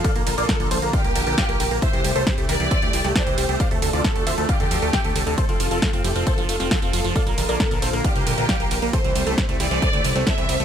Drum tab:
RD |--x---x---x---x-|--x---x---x---x-|--x---x---x---x-|--x---x---x---x-|
HH |xxoxxxoxxxoxxxox|xxoxxxoxxxoxxxox|xxoxxxoxxxoxxxox|xxoxxxoxxxoxxxox|
SD |----o-------o---|----o------oo---|----o-------o---|----o------oo---|
BD |o---o---o---o---|o---o---o---o---|o---o---o---o---|o---o---o---o---|

RD |--x---x---x---x-|--x---x---x---x-|
HH |xxoxxxoxxxoxxxox|xxoxxxoxxxoxxxox|
SD |----o-------o---|----o------oo---|
BD |o---o---o---o---|o---o---o---o---|